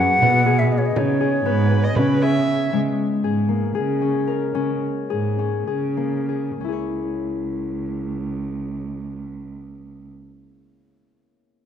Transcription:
Already playing: F#2 B3 C#4 D#4 F#4 G#4 F#5
0.21 B2 B3, frame drum
0.46 G#4, frame drum
0.59 E5
0.71 D#5, frame drum
0.78 C#5
0.86 D#5
0.96 C#3 D#4 C#5, frame drum
1.21 G#4
1.45 G#2 B3 B4
1.71 G#4
1.84 D#5
1.95 C#3 C#4 B4, frame drum
2.22 G#4 E5, frame drum
2.48 frame drum
2.73 C#3 G#3
3.24 G#2 G#4
3.49 A#3
3.75 C#3 G#4
4.01 C#4
4.27 A#4
4.55 C#3 C#4
5.10 G#2 G#4
5.39 C#4
5.67 C#3 G#4
5.97 A#3
6.29 G#4
6.61 C#2 C#4 E4
6.68 G#4
6.72 C#5

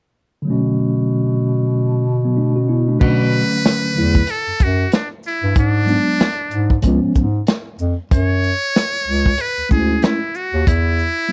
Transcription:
0.42 B2 D3 F#3
0.47 A3 C#4
2.25 F#3 B3
2.37 A3 D4
2.56 C#4 F#4
2.69 B3 E4
2.88 A3 D4
2.99 B2 D3 F#3 A3 C#4 B4, kick, crash
3.33 shaker
3.65 snare, closed hi-hat
3.94 E2 D3 F#3 A3 E4, shaker
4.15 kick
4.27 A4, closed hi-hat
4.47 F#2
4.60 F#2 F#4, kick, closed hi-hat, shaker
4.92 D4, snare, closed hi-hat
5.23 E4, shaker
5.43 G2
5.56 G#2 D4, kick, closed hi-hat
5.85 F#3 G#3 B3 D4, shaker
6.20 snare, closed hi-hat
6.51 G#2, closed hi-hat, shaker
6.70 kick
6.82 C#2 F3 G#3 B3, kick, closed hi-hat
6.86 C#4
7.02 G#2
7.15 G#2, kick, shaker
7.47 snare, closed hi-hat
7.79 F2, shaker
8.11 F#2 C#5, kick, closed hi-hat
8.44 shaker
8.76 snare, closed hi-hat
9.07 C#2, shaker
9.26 kick
9.38 B4, closed hi-hat
9.57 D2
9.69 D2 G#3 A3 C#4 E4 G#4, kick, shaker
10.02 E4, snare, closed hi-hat
10.35 F#4, shaker
10.54 D#2
10.67 E2 E4, kick, closed hi-hat
10.99 shaker
11.29 G3

